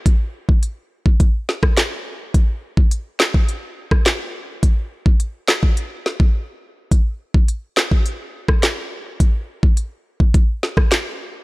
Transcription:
\new DrumStaff \with { instrumentName = "Drums" } \drummode { \time 4/4 \tempo 4 = 105 <hh bd>8. bd16 hh8. bd16 <hh bd>8 sn16 <bd ss>16 <hc hh sn>4 | <hh bd>8. bd16 hh8 <hc sn>16 bd16 hh8. <bd ss>16 <hc hh sn>4 | <hh bd>8. bd16 hh8 <hc sn>16 bd16 hh8 sn16 bd16 r4 | <hh bd>8. bd16 hh8 <hc sn>16 bd16 hh8. <bd ss>16 <hc hh sn>4 |
<hh bd>8. bd16 hh8. bd16 <hh bd>8 sn16 <bd ss>16 <hc hh sn>4 | }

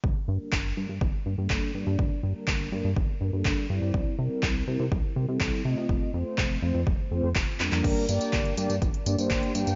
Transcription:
<<
  \new Staff \with { instrumentName = "Analog polysynth" } { \time 4/4 \key g \minor \tempo 4 = 123 r8 <g bes d' bes'>4 <g bes d' bes'>16 r8. <g bes d' bes'>16 <g bes d' a'>8. <g bes d' d''>8~ | <g bes d' d''>8 <g bes d' bes'>4 <g bes d' bes'>16 r8. <g bes d' bes'>16 <g bes d' a'>8. <g c' e' d''>8~ | <g c' e' d''>8 <g c' e' bes'>4 <g c' e' bes'>16 r8. <g c' e' bes'>16 <g c' e' a'>8. <a c' f' ees''>8~ | <a c' f' ees''>8 <a c' f' c''>4 <a c' f' c''>16 r8. <a c' f' c''>16 r8. <g bes d' bes'>8~ |
<g bes d' bes'>8 <bes d' g' d''>4 <bes d' g' d''>16 r8. <bes d' g' d''>16 <bes d' g' c''>8. <bes d' g' g''>8 | }
  \new Staff \with { instrumentName = "Analog synth bass" } { \clef bass \time 4/4 \key g \minor g,,16 r16 g,16 r16 g,,8 g,16 g,16 g,,16 r16 g,16 g,16 g,,16 r16 g,16 g,16 | g,,16 r16 g,16 r16 g,,8 g,16 g,16 g,,16 r16 g,16 g,16 g,,16 r16 g,16 g,16 | c,16 r16 c16 r16 c,8 c16 c16 c,16 r16 c16 c16 c,16 r16 c16 c16 | f,,16 r16 f,16 r16 f,,8 f,16 f,16 f,,16 r16 f,16 f,16 f,,16 r16 f,16 f,16 |
g,,16 r16 g,16 r16 g,,8 g,16 g,16 g,,16 r16 g,16 g,16 g,,16 r16 g,16 g,16 | }
  \new DrumStaff \with { instrumentName = "Drums" } \drummode { \time 4/4 bd4 <hc bd>4 bd4 <hc bd>4 | bd4 <hc bd>4 bd4 <hc bd>4 | bd4 <hc bd>4 bd4 <hc bd>4 | bd4 <hc bd>4 bd4 <hc bd>8 hc16 hc16 |
<cymc hh bd tamb>16 hh16 <hh tamb>16 <hh tamb>16 <hc hh bd tamb>16 hh16 <hh tamb>16 <hh tamb>16 <hh bd tamb>16 hh16 <hh tamb>16 <hh tamb>16 <hc hh bd>16 hh16 <hh tamb>16 <hh tamb>16 | }
>>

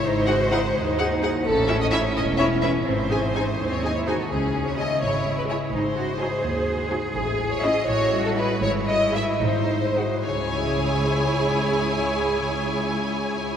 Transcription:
<<
  \new Staff \with { instrumentName = "Violin section" } { \time 6/8 \key cis \minor \tempo 4. = 83 r8 fis''8 fis''8 r8 fis''8 fis''8 | r8 e''8 e''8 r8 e''8 e''8 | r8 gis''8 gis''8 r8 gis''8 gis''8 | r4 gis''8 r4 gis''8 |
r4 gis''8 r4 gis''8 | r4 e''8 r4 e''8 | r4 e''8 r4 fis''8 | gis''2.~ |
gis''2. | }
  \new Staff \with { instrumentName = "Violin section" } { \time 6/8 \key cis \minor bis'2~ bis'8 r8 | a'8. dis''16 e''8 dis''8 cis''8 b'8 | bis'4.~ bis'16 cis''16 dis''16 cis''16 bis'16 a'16 | gis'8. cis''16 dis''8 cis''8. b'16 cis''8 |
bis'2~ bis'8 r8 | gis'8. cis''16 dis''8 cis''8. a'16 b'8 | cis''8 dis''8 e''8 bis'4. | cis''2.~ |
cis''2. | }
  \new Staff \with { instrumentName = "Viola section" } { \time 6/8 \key cis \minor r8 <dis' gis'>8 <dis' gis'>8 r8 <dis' gis'>8 <dis' gis'>8 | r8 <cis' e'>8 <cis' e'>8 r8 <cis' e'>8 <cis' e'>8 | r8 <dis' gis'>8 <dis' gis'>8 r8 <dis' gis'>8 <dis' gis'>8 | r4 <e' gis'>8 r4 <e' gis'>8 |
r4 <dis' fis'>8 r4 <dis' fis'>8 | r4 <cis' e'>8 r4 <e' g'>8 | r4 <e' gis'>8 r4 <dis' gis'>8 | <e' gis'>2.~ |
<e' gis'>2. | }
  \new Staff \with { instrumentName = "Cello section" } { \time 6/8 \key cis \minor dis'8 fis'8 e'8 dis'4. | cis'2. | bis4. bis8. e'16 fis'8 | cis'4. e'4. |
dis'8 fis'8 gis'2~ | gis'4. fis'4. | e'4. dis'8. r8. | cis,2.~ |
cis,2. | }
  \new Staff \with { instrumentName = "Harp" } { \time 6/8 \key cis \minor <gis, gis gis'>8 gis8 dis''8 gis'8 fis'8 gis8 | a,8 cis'8 cis''8 e'8 cis'8 e8 | gis,8 gis8 dis''8 gis'8 gis8 dis8 | cis8 gis8 e''8 gis'8 gis8 cis'8 |
gis,8 gis8 dis''8 gis'8 fis'8 gis8 | a,8 gis8 <e' cis''>8 a,8 g8 <e' e''>8 | gis,8 gis8 <e' e''>8 gis,8 gis8 <fis' dis''>8 | <cis gis cis' gis' e'' gis''>2.~ |
<cis gis cis' gis' e'' gis''>2. | }
  \new Staff \with { instrumentName = "Double bass section" } { \clef bass \time 6/8 \key cis \minor gis,,4. dis,4. | a,,4. e,,4. | gis,,4. dis,4. | cis,4. gis,,4. |
gis,,4. dis,4. | a,,4. a,,4. | gis,,4. gis,,4. | cis,2.~ |
cis,2. | }
>>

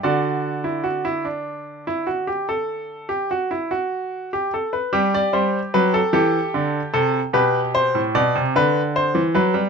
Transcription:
<<
  \new Staff \with { instrumentName = "Grand piano" } { \time 12/8 \key g \major \tempo 4. = 50 << { d''1~ d''4. r8 | r16 d''16 c''8 b'16 a'16 g'4 a'8 b'8 c''8 d''8 b'8 c''8 b'8 | } \\ { fis'8. e'16 fis'16 e'16 d'8. e'16 fis'16 g'16 a'8. g'16 fis'16 e'16 fis'8. g'16 a'16 b'16 | g'4. a'4. g'2. | } >> }
  \new Staff \with { instrumentName = "Grand piano" } { \clef bass \time 12/8 \key g \major d1~ d4. r8 | g8 g8 fis8 e8 d8 c8 b,8. a,16 b,16 c16 d8. e16 fis16 g16 | }
>>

